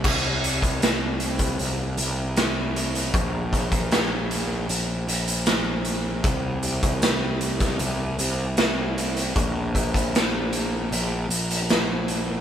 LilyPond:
<<
  \new Staff \with { instrumentName = "Picked electric bass" } { \clef bass \time 4/4 \key bes \lydian \tempo 4 = 77 c,2 c,8 c,4. | bes,,2 bes,,8 bes,,4. | c,2 c,8 c,4. | bes,,2 bes,,8 bes,,4. | }
  \new DrumStaff \with { instrumentName = "Drums" } \drummode { \time 4/4 <cymc bd>8 hh16 <hh bd>16 <hh sn>8 hh16 <hh bd>16 hh8 hh8 <hh sn>8 hh16 hh16 | <hh bd>8 <hh bd>16 <hh bd>16 <hh sn>8 hh8 hh8 hh16 hh16 <hh sn>8 hh8 | <hh bd>8 hh16 <hh bd>16 <hh sn>8 hh16 <hh bd sn>16 hh8 hh8 <hh sn>8 hh16 hh16 | <hh bd>8 <hh bd>16 <hh bd>16 <hh sn>8 hh8 hh8 hh16 hh16 <hh sn>8 hh8 | }
>>